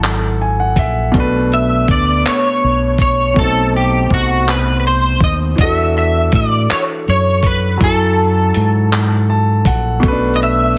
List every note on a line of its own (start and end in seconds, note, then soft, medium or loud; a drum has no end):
0.00 0.74 G#1 medium
0.00 1.09 F#3 medium
0.00 1.10 E4 medium
0.00 0.36 A4 medium
0.00 1.13 A4 medium
0.00 0.40 G#5 medium
0.00 closed hi-hat medium
0.04 clap loud
0.42 0.58 G#5 medium
0.60 0.77 F#5 medium
0.76 1.10 A#1 medium
0.76 1.13 E5 medium
0.76 kick medium
0.76 closed hi-hat medium
1.12 1.85 B1 loud
1.12 3.31 B2 medium
1.12 3.33 A3 medium
1.12 kick loud
1.12 closed hi-hat medium
1.17 3.34 D4 medium
1.17 3.35 B4 medium
1.54 1.87 E5 loud
1.88 2.22 D2 medium
1.88 2.28 D5 medium
1.88 kick loud
1.88 closed hi-hat medium
2.26 2.97 C#5 loud
2.26 clap loud
2.26 closed hi-hat medium
2.64 3.33 B1 medium
2.98 3.39 C#5 medium
2.98 kick medium
2.98 closed hi-hat medium
3.34 4.07 B1 loud
3.34 5.54 B2 medium
3.34 5.55 A3 medium
3.34 kick loud
3.39 5.57 C4 medium
3.39 5.56 D#4 medium
3.39 3.72 A4 loud
3.76 4.13 G4 medium
4.10 5.18 C2 medium
4.10 4.50 F#4 medium
4.10 kick medium
4.49 4.77 B4 medium
4.49 clap loud
4.80 4.86 B4 medium
4.87 5.20 C5 medium
5.21 5.55 D#2 medium
5.21 5.33 D#5 medium
5.21 kick medium
5.56 6.29 E2 medium
5.56 7.75 E3 medium
5.56 7.77 D4 medium
5.56 kick loud
5.56 closed hi-hat medium
5.61 7.78 F#4 medium
5.61 7.79 A4 medium
5.61 5.97 E5 loud
5.98 6.31 E5 medium
6.32 6.66 A2 medium
6.32 6.72 D5 medium
6.32 kick loud
6.32 closed hi-hat medium
6.70 6.82 C#5 medium
6.70 muted fingered electric bass stroke soft
6.70 clap loud
6.70 closed hi-hat medium
7.08 7.78 F#2 medium
7.08 7.46 C#5 medium
7.43 7.83 B4 medium
7.43 kick medium
7.43 closed hi-hat medium
7.77 8.51 F#2 medium
7.77 9.97 F#3 medium
7.77 9.99 E4 medium
7.77 kick loud
7.77 closed hi-hat medium
7.83 9.27 A4 medium
7.83 10.01 A4 medium
7.83 10.00 G#5 medium
8.54 9.63 G#2 medium
8.54 closed hi-hat medium
8.92 clap loud
8.92 closed hi-hat medium
9.30 9.64 A5 medium
9.65 9.99 A#1 medium
9.65 10.01 F#5 medium
9.65 kick medium
9.65 closed hi-hat medium
10.00 10.74 B1 medium
10.00 10.78 B2 medium
10.00 10.78 A3 medium
10.00 kick loud
10.00 closed hi-hat medium
10.05 10.11 C#4 medium
10.05 10.78 B4 medium
10.12 10.78 D4 medium
10.36 10.41 D#5 medium
10.43 10.76 E5 loud